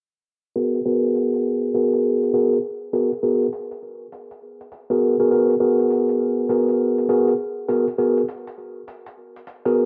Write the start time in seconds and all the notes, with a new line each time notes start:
0.56 B3 F#4 G#4 A#4, closed hi-hat
0.75 closed hi-hat
0.85 B3 F#4 G#4 A#4
1.04 closed hi-hat
1.15 closed hi-hat
1.34 closed hi-hat
1.74 B3 F#4 G#4 A#4, closed hi-hat
1.93 closed hi-hat
2.23 closed hi-hat
2.34 B3 F#4 G#4 A#4, closed hi-hat
2.53 closed hi-hat
2.93 B3 F#4 G#4 A#4, closed hi-hat
3.12 closed hi-hat
3.23 B3 F#4 G#4 A#4
3.42 closed hi-hat
3.53 closed hi-hat
3.71 closed hi-hat
4.12 closed hi-hat
4.31 closed hi-hat
4.61 closed hi-hat
4.72 closed hi-hat
4.90 B3 F#4 G#4 A#4, closed hi-hat
5.20 B3 F#4 G#4 A#4
5.31 B3 F#4 G#4 A#4, closed hi-hat
5.50 closed hi-hat
5.60 B3 F#4 G#4 A#4
5.80 closed hi-hat
5.91 closed hi-hat
6.09 closed hi-hat
6.49 B3 F#4 G#4 A#4, closed hi-hat
6.68 closed hi-hat
6.98 closed hi-hat
7.09 B3 F#4 G#4 A#4, closed hi-hat
7.28 closed hi-hat
7.69 B3 F#4 G#4 A#4, closed hi-hat
7.88 closed hi-hat
7.98 B3 F#4 G#4 A#4
8.17 closed hi-hat
8.29 closed hi-hat
8.47 closed hi-hat
8.88 closed hi-hat
9.06 closed hi-hat
9.36 closed hi-hat
9.47 closed hi-hat
9.65 B3 F#4 G#4 A#4, closed hi-hat